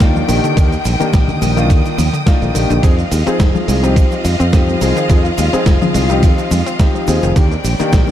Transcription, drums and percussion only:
0.00 kick loud
0.00 snare loud
0.00 closed hi-hat medium
0.00 ride medium
0.00 cabasa medium
0.00 cabasa soft
0.15 high conga medium
0.15 cabasa soft
0.29 open hi-hat loud
0.29 muted conga soft
0.29 cabasa medium
0.44 closed hi-hat medium
0.44 cabasa soft
0.57 kick loud
0.57 closed hi-hat medium
0.57 ride medium
0.57 cabasa soft
0.57 cabasa medium
0.72 closed hi-hat soft
0.72 cabasa soft
0.85 open hi-hat loud
0.85 cabasa medium
1.00 closed hi-hat medium
1.00 cabasa soft
1.13 kick loud
1.13 snare loud
1.13 closed hi-hat medium
1.13 ride medium
1.13 cabasa medium
1.13 cabasa soft
1.28 closed hi-hat soft
1.28 muted conga soft
1.28 high conga medium
1.28 low conga medium
1.28 cabasa soft
1.42 open hi-hat loud
1.42 cabasa medium
1.57 closed hi-hat medium
1.57 cabasa soft
1.70 kick loud
1.70 closed hi-hat medium
1.70 ride medium
1.70 cabasa medium
1.70 cabasa soft
1.85 closed hi-hat soft
1.85 cabasa soft
1.98 open hi-hat loud
1.98 high conga medium
1.98 cabasa medium
2.14 closed hi-hat soft
2.14 cabasa soft
2.27 kick loud
2.27 snare loud
2.27 closed hi-hat medium
2.27 ride medium
2.27 cabasa medium
2.27 cabasa soft
2.42 closed hi-hat soft
2.42 cabasa soft
2.54 open hi-hat loud
2.54 muted conga soft
2.54 cabasa medium
2.70 closed hi-hat medium
2.70 cabasa soft
2.83 kick loud
2.83 closed hi-hat medium
2.83 ride medium
2.83 cabasa medium
2.83 cabasa soft
2.99 closed hi-hat soft
2.99 cabasa soft
3.12 open hi-hat loud
3.12 cabasa loud
3.12 cabasa medium
3.27 closed hi-hat soft
3.27 cabasa soft
3.40 kick loud
3.40 snare loud
3.40 closed hi-hat medium
3.40 ride medium
3.40 cabasa medium
3.40 cabasa soft
3.55 muted conga soft
3.55 high conga medium
3.55 cabasa soft
3.68 open hi-hat medium
3.68 cabasa medium
3.68 cabasa loud
3.84 closed hi-hat medium
3.84 cabasa soft
3.96 kick loud
3.96 closed hi-hat medium
3.96 ride medium
3.96 cabasa soft
3.96 cabasa medium
4.11 closed hi-hat soft
4.11 cabasa soft
4.25 open hi-hat loud
4.25 cabasa medium
4.40 closed hi-hat medium
4.40 cabasa soft
4.53 kick loud
4.53 snare loud
4.53 closed hi-hat medium
4.53 ride medium
4.53 cabasa soft
4.68 high conga medium
4.68 cabasa soft
4.81 open hi-hat medium
4.81 muted conga soft
4.81 cabasa medium
4.97 closed hi-hat medium
4.97 cabasa soft
5.09 kick loud
5.09 closed hi-hat medium
5.09 ride medium
5.09 cabasa soft
5.25 closed hi-hat soft
5.25 cabasa soft
5.38 open hi-hat loud
5.38 cabasa loud
5.38 cabasa medium
5.53 closed hi-hat medium
5.53 cabasa soft
5.66 kick loud
5.66 snare loud
5.66 closed hi-hat medium
5.66 ride medium
5.66 cabasa soft
5.66 cabasa medium
5.82 muted conga soft
5.82 high conga medium
5.82 low conga medium
5.82 cabasa soft
5.94 open hi-hat medium
5.94 cabasa medium
6.09 closed hi-hat medium
6.09 cabasa soft
6.10 cabasa soft
6.23 kick loud
6.23 closed hi-hat medium
6.23 ride medium
6.23 cabasa medium
6.23 cabasa soft
6.38 closed hi-hat soft
6.38 cabasa soft
6.51 open hi-hat loud
6.51 high conga medium
6.51 cabasa medium
6.66 closed hi-hat medium
6.66 cabasa soft
6.79 kick loud
6.79 snare loud
6.79 closed hi-hat medium
6.79 ride medium
6.79 cabasa medium
6.79 cabasa soft
6.95 cabasa soft
7.07 open hi-hat medium
7.07 muted conga soft
7.07 cabasa medium
7.22 closed hi-hat medium
7.22 cabasa soft
7.36 kick loud
7.36 closed hi-hat medium
7.36 ride medium
7.36 cabasa medium
7.36 cabasa soft
7.52 closed hi-hat soft
7.52 cabasa soft
7.64 open hi-hat loud
7.64 cabasa medium
7.79 closed hi-hat medium
7.79 cabasa soft
7.92 kick loud
7.92 snare loud
7.92 closed hi-hat medium
7.92 ride medium
7.92 cabasa medium
7.92 cabasa soft
8.07 muted conga soft
8.07 high conga medium

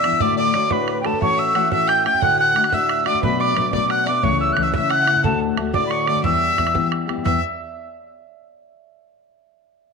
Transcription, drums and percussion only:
0.04 bodhran medium
0.12 bodhran soft
0.20 bodhran medium
0.28 bodhran soft
0.54 bodhran medium
0.71 bodhran medium
0.88 bodhran medium
1.05 bodhran medium
1.13 bodhran soft
1.22 bodhran medium
1.30 bodhran soft
1.55 bodhran medium
1.72 bodhran medium
1.89 bodhran medium
2.06 bodhran medium
2.14 bodhran soft
2.22 bodhran medium
2.31 bodhran soft
2.56 bodhran medium
2.64 bodhran medium
2.72 bodhran medium
2.89 bodhran medium
3.06 bodhran medium
3.14 bodhran soft
3.23 bodhran medium
3.32 bodhran soft
3.57 bodhran medium
3.73 bodhran medium
3.90 bodhran medium
4.07 bodhran medium
4.23 bodhran medium
4.31 bodhran soft
4.57 bodhran medium
4.74 bodhran medium
4.90 bodhran medium
5.07 bodhran medium
5.16 bodhran soft
5.24 bodhran medium
5.33 bodhran soft
5.57 bodhran medium
5.74 bodhran medium
5.91 bodhran medium
6.07 bodhran medium
6.15 bodhran soft
6.24 bodhran medium
6.33 bodhran soft
6.58 bodhran medium
6.67 bodhran medium
6.75 bodhran medium
6.92 bodhran medium
7.09 bodhran medium
7.18 bodhran soft
7.26 bodhran medium

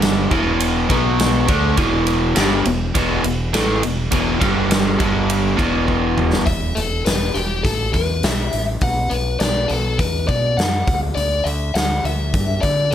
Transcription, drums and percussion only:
0.02 snare loud
0.02 ride medium
0.31 kick medium
0.31 ride medium
0.60 ride medium
0.90 kick loud
0.90 ride medium
1.19 snare loud
1.19 ride medium
1.48 kick loud
1.48 ride medium
1.77 kick medium
1.77 ride medium
2.07 ride medium
2.36 snare loud
2.36 ride medium
2.65 ride medium
2.95 kick loud
2.95 ride loud
3.24 ride medium
3.54 snare loud
3.54 ride medium
3.83 ride medium
4.12 kick medium
4.12 ride loud
4.41 kick loud
4.41 ride medium
4.71 snare loud
4.71 ride medium
5.00 kick loud
5.00 ride medium
5.30 ride medium
5.59 kick loud
5.59 ride medium
5.88 kick medium
6.18 mid tom medium
6.33 snare medium
6.46 kick medium
6.46 open hi-hat medium
6.77 open hi-hat medium
7.06 snare loud
7.06 open hi-hat medium
7.35 open hi-hat soft
7.65 kick medium
7.65 open hi-hat medium
7.94 kick medium
7.94 open hi-hat soft
8.23 snare loud
8.23 open hi-hat medium
8.53 open hi-hat medium
8.81 kick medium
8.81 open hi-hat medium
9.11 open hi-hat soft
9.40 snare loud
9.40 open hi-hat medium
9.69 open hi-hat soft
9.99 kick medium
9.99 open hi-hat medium
10.29 kick medium
10.29 open hi-hat soft
10.59 snare loud
10.59 open hi-hat medium
10.88 kick loud
10.88 open hi-hat soft
11.17 open hi-hat medium
11.46 open hi-hat soft
11.75 snare medium
11.75 open hi-hat medium
12.05 open hi-hat soft
12.34 kick medium
12.34 open hi-hat medium
12.63 kick medium
12.63 open hi-hat soft

